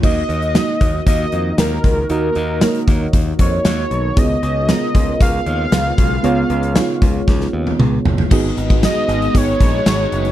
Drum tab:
CC |x---------------|----------------|----------------|----------------|
HH |--xxx-x-x-x-x-x-|x-x-xxx-x-x-x-x-|x-x-x-x-x-x-x-x-|x-xxx-x---------|
TB |----------------|----------------|----------------|----------------|
SD |----o-------o---|----o-------o---|----o-------o---|----o---oo------|
T1 |----------------|----------------|----------------|-----------o----|
T2 |----------------|----------------|----------------|------------o---|
FT |----------------|----------------|----------------|--------------oo|
BD |o-----o-o-----o-|------o-o-o-----|o-----o-o-----o-|------o-o-------|

CC |x---------------|
HH |--x-x-xxx-x-x-xx|
TB |----x-------x---|
SD |----o-------o---|
T1 |----------------|
T2 |----------------|
FT |----------------|
BD |o--o----o-o-----|